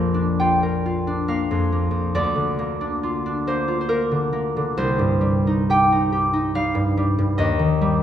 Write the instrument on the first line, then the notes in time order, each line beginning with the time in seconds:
harp
Already playing: A#1 F2 A#3 A#4 C5
0.14 D4
0.40 F4 G5
0.63 A#4
0.86 F4
1.07 D4
1.28 A#3 F5
1.51 F2
1.72 A#3
1.91 F2
2.15 D2 D5
2.35 D3
2.59 A#3
2.81 D4
3.03 F4
3.26 D4
3.47 A#3 C5
3.68 F4
3.81 C5
3.89 A#3 A#4
4.11 D3
4.33 A#3
4.57 D3
4.77 C2 C5
4.99 G2
5.21 G3
5.47 D#4
5.70 G4 G5
5.92 D#4
6.12 G4
6.33 D#4
6.55 G3 F5
6.75 G2
6.97 G3
7.19 G2
7.38 D#2 D#5
7.59 D#3
7.81 G3